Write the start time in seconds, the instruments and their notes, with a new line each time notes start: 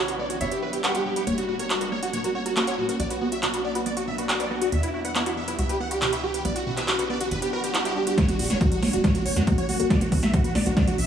Already playing: analog synth bass B1, ambient pad B3, grand piano C#5
0.08 supersaw synth F#4, synth arpeggio sound B4, closed hi-hat
0.19 synth arpeggio sound B3, supersaw synth D5
0.30 supersaw synth F#4, synth arpeggio sound F#4, closed hi-hat
0.41 analog synth bass G1, synth arpeggio sound B2, supersaw synth C#5, grand piano E5, closed hi-hat
0.51 supersaw synth G4, synth arpeggio sound B4, closed hi-hat
0.62 synth arpeggio sound F#4, supersaw synth B4
0.73 supersaw synth G4, synth arpeggio sound B4, closed hi-hat
0.84 synth arpeggio sound B3, supersaw synth G4, grand piano F#5, clap, closed hi-hat
0.95 synth arpeggio sound F#4, supersaw synth G4, closed hi-hat
1.05 synth arpeggio sound B2, supersaw synth G4
1.16 supersaw synth G4, synth arpeggio sound B4, closed hi-hat
1.27 analog synth bass F#1, ambient pad F#3 A#3 C#4, synth arpeggio sound A#3, supersaw synth C#5, closed hi-hat
1.38 supersaw synth F#4, synth arpeggio sound F#4, closed hi-hat
1.49 synth arpeggio sound A#2, supersaw synth F#4
1.59 synth arpeggio sound A#4, supersaw synth C#5, closed hi-hat
1.70 supersaw synth F#4, synth arpeggio sound F#4, clap, closed hi-hat
1.81 supersaw synth F#4, synth arpeggio sound A#4, closed hi-hat
1.92 synth arpeggio sound A#3, supersaw synth C#5
2.03 synth arpeggio sound F#4, supersaw synth F#4, closed hi-hat
2.13 synth arpeggio sound A#2, supersaw synth C#5, closed hi-hat
2.24 supersaw synth F#4, synth arpeggio sound A#4, closed hi-hat
2.35 synth arpeggio sound F#4, supersaw synth C#5
2.46 supersaw synth F#4, synth arpeggio sound A#4, closed hi-hat
2.56 synth arpeggio sound A#3, supersaw synth F#4, clap, closed hi-hat
2.67 synth arpeggio sound F#4, supersaw synth C#5, closed hi-hat
2.78 synth arpeggio sound A#2, supersaw synth F#4
2.89 supersaw synth F#4, synth arpeggio sound A#4, closed hi-hat
3.00 analog synth bass B1, ambient pad B3 D4, synth arpeggio sound F#4, supersaw synth D5, closed hi-hat
3.10 supersaw synth F#4, synth arpeggio sound B4, closed hi-hat
3.21 synth arpeggio sound B3, supersaw synth F#4
3.32 synth arpeggio sound F#4, supersaw synth E5, closed hi-hat
3.43 synth arpeggio sound B2, supersaw synth F#4, clap, closed hi-hat
3.54 supersaw synth F#4, synth arpeggio sound B4, closed hi-hat
3.64 synth arpeggio sound F#4, supersaw synth D5
3.75 supersaw synth F#4, synth arpeggio sound B4, closed hi-hat
3.86 synth arpeggio sound B3, supersaw synth D5, closed hi-hat
3.97 supersaw synth F#4, synth arpeggio sound F#4, closed hi-hat
4.07 synth arpeggio sound B2, supersaw synth E5
4.18 supersaw synth F#4, synth arpeggio sound B4, closed hi-hat
4.29 supersaw synth F#4, synth arpeggio sound F#4, clap, closed hi-hat
4.40 synth arpeggio sound B4, supersaw synth D5, closed hi-hat
4.51 synth arpeggio sound B3, supersaw synth F#4
4.61 supersaw synth F#4, synth arpeggio sound F#4, closed hi-hat
4.72 analog synth bass E2, synth arpeggio sound B2, ambient pad E4, supersaw synth E5, closed hi-hat
4.83 supersaw synth E4, synth arpeggio sound B4, closed hi-hat
4.94 supersaw synth E4, synth arpeggio sound F#4
5.05 synth arpeggio sound B4, supersaw synth F#5, closed hi-hat
5.16 synth arpeggio sound B3, supersaw synth E4, clap, closed hi-hat
5.26 supersaw synth E4, synth arpeggio sound F#4, closed hi-hat
5.37 synth arpeggio sound B2, supersaw synth E5
5.48 supersaw synth E4, synth arpeggio sound B4, closed hi-hat
5.59 analog synth bass C#2, synth arpeggio sound F#4, supersaw synth E5, closed hi-hat
5.69 supersaw synth G4, synth arpeggio sound B4, closed hi-hat
5.80 synth arpeggio sound B3, supersaw synth F#5
5.91 synth arpeggio sound F#4, supersaw synth G4, closed hi-hat
6.02 synth arpeggio sound B2, supersaw synth G4, clap, closed hi-hat
6.13 synth arpeggio sound B4, supersaw synth E5, closed hi-hat
6.23 synth arpeggio sound F#4, supersaw synth G4
6.34 supersaw synth G4, synth arpeggio sound B4, closed hi-hat
6.45 analog synth bass B1, synth arpeggio sound B3, ambient pad B3, supersaw synth D5, closed hi-hat
6.56 synth arpeggio sound F#4, supersaw synth F#4, closed hi-hat
6.67 synth arpeggio sound B2, supersaw synth F#4
6.77 synth arpeggio sound B4, supersaw synth E5, clap, closed hi-hat
6.88 synth arpeggio sound F#4, supersaw synth F#4, clap, closed hi-hat
6.99 supersaw synth F#4, synth arpeggio sound B4, closed hi-hat
7.10 synth arpeggio sound B3, supersaw synth D5
7.21 supersaw synth F#4, synth arpeggio sound F#4, closed hi-hat
7.31 analog synth bass G1, synth arpeggio sound B2, supersaw synth B4, closed hi-hat, swell
7.42 supersaw synth G4, synth arpeggio sound B4, closed hi-hat
7.53 supersaw synth A#4, synth arpeggio sound B4
7.64 synth arpeggio sound B3, supersaw synth G4, closed hi-hat
7.75 synth arpeggio sound E4, supersaw synth G4, clap, closed hi-hat
7.85 synth arpeggio sound E4, supersaw synth G4, closed hi-hat
7.96 synth arpeggio sound D4, supersaw synth G4
8.07 synth arpeggio sound F#4, supersaw synth G4, closed hi-hat
8.18 ambient pad F#3 A#3 C#4, synth arpeggio sound A#3, supersaw synth C#5, kick, snare, closed hi-hat
8.29 analog synth bass F#1, synth arpeggio sound F#4, supersaw synth F#4, closed hi-hat
8.39 analog synth bass F#1, synth arpeggio sound A#2, supersaw synth F#4, open hi-hat
8.50 analog synth bass F#1, synth arpeggio sound A#4, supersaw synth C#5, snare, closed hi-hat
8.61 synth arpeggio sound F#4, supersaw synth F#4, kick, closed hi-hat
8.72 analog synth bass F#1, supersaw synth F#4, synth arpeggio sound A#4, closed hi-hat
8.82 analog synth bass F#1, synth arpeggio sound A#3, supersaw synth C#5, snare, open hi-hat
8.93 analog synth bass F#1, synth arpeggio sound F#4, supersaw synth F#4, closed hi-hat
9.04 synth arpeggio sound A#2, supersaw synth C#5, kick, snare, closed hi-hat
9.15 analog synth bass F#1, supersaw synth F#4, synth arpeggio sound A#4, closed hi-hat
9.26 analog synth bass F#1, synth arpeggio sound F#4, supersaw synth C#5, open hi-hat
9.36 analog synth bass F#2, supersaw synth F#4, synth arpeggio sound A#4, snare, closed hi-hat
9.47 synth arpeggio sound A#3, supersaw synth F#4, kick, closed hi-hat
9.58 analog synth bass F#1, synth arpeggio sound F#4, supersaw synth C#5, closed hi-hat
9.69 analog synth bass F#1, synth arpeggio sound A#2, supersaw synth F#4, open hi-hat
9.80 analog synth bass F#1, supersaw synth F#4, synth arpeggio sound A#4, closed hi-hat
9.90 ambient pad B3 D4, synth arpeggio sound F#4, supersaw synth D5, kick, snare, closed hi-hat
10.01 analog synth bass B1, supersaw synth F#4, synth arpeggio sound B4, closed hi-hat
10.12 analog synth bass B1, synth arpeggio sound B3, supersaw synth F#4, kick, open hi-hat
10.23 analog synth bass B1, synth arpeggio sound F#4, supersaw synth E5, snare, closed hi-hat
10.34 synth arpeggio sound B2, supersaw synth F#4, kick, closed hi-hat
10.44 analog synth bass B1, supersaw synth F#4, synth arpeggio sound B4, closed hi-hat
10.55 analog synth bass B1, synth arpeggio sound F#4, supersaw synth D5, snare, open hi-hat
10.66 analog synth bass B1, supersaw synth F#4, synth arpeggio sound B4, closed hi-hat
10.77 synth arpeggio sound B3, supersaw synth D5, kick, snare, closed hi-hat
10.87 analog synth bass B1, synth arpeggio sound F#4, supersaw synth F#4, closed hi-hat
10.98 analog synth bass B1, synth arpeggio sound B2, supersaw synth E5, open hi-hat